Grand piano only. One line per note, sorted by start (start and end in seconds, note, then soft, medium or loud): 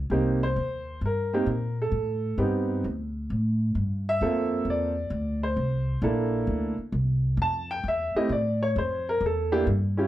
0.11 0.39 A#3 medium
0.11 0.39 C4 medium
0.11 0.39 D#4 medium
0.11 0.39 G4 medium
0.43 0.99 C5 medium
1.06 1.76 A#4 medium
1.33 1.46 A#3 medium
1.33 1.46 C4 medium
1.33 1.46 D#4 medium
1.33 1.47 G4 medium
1.82 2.36 A4 medium
2.38 2.84 B3 medium
2.38 2.84 C4 medium
2.38 2.84 D#4 medium
2.38 2.84 G4 medium
4.09 4.64 E5 medium
4.22 4.91 A#3 medium
4.22 4.91 C4 medium
4.22 4.91 F4 medium
4.22 4.91 A4 medium
4.70 5.40 D5 medium
5.43 5.99 C5 medium
6.03 6.73 A#3 medium
6.03 6.73 D4 medium
6.03 6.73 E4 medium
6.03 6.73 A4 medium
7.42 7.70 A5 medium
7.71 7.85 G5 loud
7.88 8.16 E5 medium
8.16 8.29 A3 medium
8.16 8.29 C4 medium
8.16 8.29 E4 medium
8.16 8.29 G4 medium
8.16 8.30 D#5 medium
8.32 8.61 D5 medium
8.63 8.76 C#5 medium
8.78 9.07 C5 medium
9.09 9.22 A#4 medium
9.26 9.66 A4 medium
9.52 9.65 A#3 medium
9.52 9.65 D4 medium
9.52 9.65 E4 medium
9.52 9.65 G4 loud
9.97 10.07 C#4 medium
9.97 10.07 E4 medium
9.97 10.07 F4 medium
9.97 10.07 G4 medium